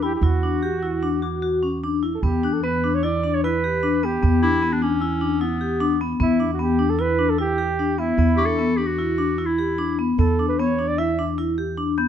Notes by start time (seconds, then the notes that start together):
Already playing: E2
0.02 E4 G4 B5
0.15 G4
0.21 E2 E4 F#4
0.43 D4
0.63 G4
0.83 E4
1.03 D4
1.22 F#4 D6
1.42 F#4
1.63 C#4
1.84 D4
2.03 E4
2.15 A4
2.23 E2 B3 G4
2.43 D4 F#6
2.53 A4
2.63 B3 B4
2.84 D4
2.95 C#5
3.03 E4 D5
3.24 D4
3.34 C#5
3.44 E4 B4
3.64 G4
3.83 D4
4.03 B3 G4
4.23 E2 B3
4.42 D4 E4
4.62 B3
4.73 D4
4.82 C#4 D4
5.01 E4 E6
5.21 D4
5.41 B3 E4
5.61 G4
5.80 D4
6.01 B3
6.20 E2 B3 E4
6.40 D4
6.53 F#4
6.59 B3 G4
6.79 D4
6.90 A4
6.99 E4 B4
7.19 D4
7.29 A4
7.38 E4 G4
7.58 G4
7.79 D4
7.99 B3 E4
8.18 E2 B3
8.37 D4 G4 C#6
8.46 A4
8.59 B3
8.76 D4 G4
8.86 F#4
8.98 E4
9.18 D4
9.38 E4
9.46 E4
9.59 G4
9.78 D4
9.99 B3
10.18 E2 B3 A4
10.39 D4
10.49 B4
10.59 B3 C#5
10.79 D4
10.88 D5
10.98 E4 E5
11.19 D4
11.38 E4
11.58 G4
11.77 D4
11.98 B3 G6